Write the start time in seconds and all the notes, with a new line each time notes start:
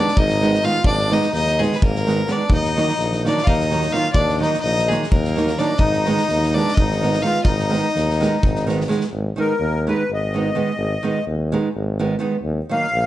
Already playing: D4 D5
0.07 snare
0.17 G#1 D#4 D#5, kick
0.29 snare
0.41 D#3 G#3 B3 D#4, snare
0.54 snare
0.63 D#3 G#3 B3 D#4 F4 F5, snare
0.84 G#1 D4 D5, kick
0.98 snare
1.10 D#3 G#3 B3 D#4 D#5, snare
1.22 snare
1.33 D#2 D#4 D#5, snare
1.46 snare
1.59 D#3 G#3 B3 D#4 G#4, snare
1.72 B3 B4, snare
1.82 G#1 A#3 A#4, kick
1.95 snare
2.07 D#3 G#3 B3 D#4, snare
2.27 D#3 G#3 B3 D4 D#4 D5, snare
2.50 D#2 D#4, kick
2.54 D#5
2.63 snare
2.77 D#3 F#3 A#3 D#4, snare
2.88 snare
2.99 A#1, snare
3.12 snare
3.25 D#3 F#3 A#3 D4 D#4 D5, snare
3.38 snare
3.42 F4 F5
3.47 D#2 D#4 D#5, kick
3.60 snare
3.71 D#3 F#3 A#3 D#4, snare
3.81 snare
3.92 D#3 F#3 A#3 D#4 F4 F5, snare
4.13 D#2 D4 D5, kick
4.28 snare
4.40 D#3 F#3 A#3 D#4 D#5, snare
4.53 snare
4.60 A#1 D#4 D#5, snare
4.79 snare
4.87 D#3 F#3 G#3 G#4, snare
4.91 A#3 D#4
5.02 snare
5.11 D#2 A#3 A#4, kick
5.24 snare
5.36 D#3 F#3 A#3 D#4, snare
5.47 snare
5.58 D#3 F#3 A#3 D4 D#4 D5, snare
5.79 G#1 D#4 D#5, kick
5.93 snare
6.05 D#3 G#3 B3 D#4, snare
6.17 snare
6.28 D#2, snare
6.42 snare
6.54 D#3 G#3 B3 D4 D#4 D5, snare
6.68 snare
6.74 D#5, kick
6.79 G#1 D#4
6.91 snare
7.01 D#3 G#3 B3 D#4, snare
7.13 snare
7.22 D#3 G#3 B3 D#4 F4 F5, snare
7.43 G#1 D#4 D#5, kick
7.59 snare
7.70 D#3 G#3 B3 D#4, snare
7.95 D#2, snare
8.10 snare
8.20 D#3 G#3 B3 D#4, snare
8.43 G#1, kick
8.55 snare
8.67 D#3 G#3 B3 D#4, snare
8.80 snare
8.88 D#3 G#3 B3 D#4, snare
9.00 snare
9.12 G#1
9.36 D#3 G#3 B3 D#4 A#4
9.60 D#2
9.87 D#3 G#3 B3 D#4 B4
10.10 G#1 D#5
10.34 D#3 G#3 B3 D#4
10.55 D#3 G#3 B3 D#4
10.78 G#1
11.03 D#3 G#3 B3 D#4
11.27 D#2
11.52 D#3 G#3 B3 D#4
11.76 G#1
11.99 D#3 G#3 B3 D#4
12.19 D#3 G#3 B3 D#4
12.43 D#2
12.69 D#3 F#3 A#3 D#4 F5
12.94 A#1